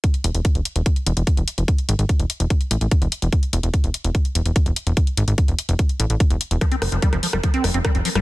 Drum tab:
HH |xxxxxxxxxxxxxxxx|xxxxxxxxxxxxxxxx|xxxxxxxxxxxxxxxx|xxxxxxxxxxxxxxxx|
SD |----------------|----------------|----------------|----------------|
BD |o---o---o---o---|o---o---o---o---|o---o---o---o---|o---o---o---o---|

HH |xxoxxxoxxxoxxxox|
SD |r-r--r-r--r-r--r|
BD |o---o---o---o---|